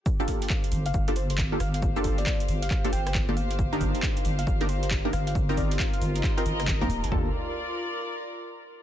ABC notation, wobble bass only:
X:1
M:4/4
L:1/16
Q:"Swing 16ths" 1/4=136
K:Gm
V:1 name="Wobble bass" clef=bass
z6 G,,,2 G,,,6 G,,,2- | G,,,4 z2 G,,,2 z2 G,,,3 G,,,3- | G,,,3 z3 G,,,2 G,,,6 G,,,2- | G,,,4 z2 G,,,2 z2 G,,,3 C,, D,,, G,,, |
G,,,2 z12 z2 |]